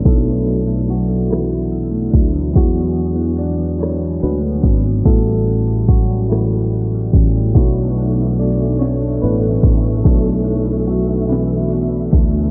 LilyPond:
<<
  \new Staff \with { instrumentName = "String section" } { \time 6/8 \key b \minor \tempo 4. = 48 r2. | r2. | r2. | <a' e'' cis'''>2.~ |
<a' e'' cis'''>2. | }
  \new Staff \with { instrumentName = "Tine electric piano" } { \time 6/8 \key b \minor << { a'4 <fis fis'>8 <e e'>4 r8 | <fis fis'>4 <d' d''>8 <d' cis''>8 <b b'>4 | <a a'>4 <fis fis'>8 <e e'>4 r8 | <fis fis'>4 <d' d''>8 <d' cis''>8 <b b'>4 |
a'4 <fis fis'>8 <e e'>4 r8 | } \\ { <a d' e' cis''>2. | <gis d'>8 r4. <gis d' fis'>8 r8 | <g b cis' fis'>4. r4. | <a d' e' cis''>4. r8 <a d' e' cis''>8 r8 |
<a d' e' cis''>8 r2 r8 | } >> }
  \new Staff \with { instrumentName = "Clean electric guitar" } { \time 6/8 \key b \minor <b, a d' e'>16 a16 e'16 a16 d'16 a16 <b, e'>16 a16 e'16 a16 d'16 a16 | <e gis'>16 b16 gis'16 b16 d'16 b16 <e gis'>16 b16 gis'16 b16 d'16 b16 | <a, fis'>16 g16 fis'16 g16 cis'16 g16 <a, fis'>16 g16 fis'16 g16 cis'16 g16 | <b, d'>16 e16 d'16 e16 a16 e16 <b, d'>16 e16 d'16 e16 a16 e16 |
<b, d'>16 e16 d'16 e16 a16 e16 <b, d'>16 e16 d'16 e16 a16 e16 | }
  \new Staff \with { instrumentName = "Fretless electric bass" } { \clef bass \time 6/8 \key b \minor b,,2~ b,,8 d,8 | e,2 d,8 gis,,8 | a,,2~ a,,8 a,,8 | b,,2 a,,8 a,,8 |
b,,2~ b,,8 d,8 | }
  \new DrumStaff \with { instrumentName = "Drums" } \drummode { \time 6/8 <hh bd>8 hh8 hh8 <hh ss>8 hh8 <hh bd>8 | <hh bd>8 hh8 hh8 <hh ss>8 hh8 <hh bd>8 | <hh bd>8 hh8 <hh bd>8 <hh ss>8 hh8 <hh bd>8 | <hh bd>8 hh8 hh8 <hh sn>8 hh8 <hh bd>8 |
<hh bd>8 hh8 hh8 <hh sn>8 hh8 <hh bd>8 | }
>>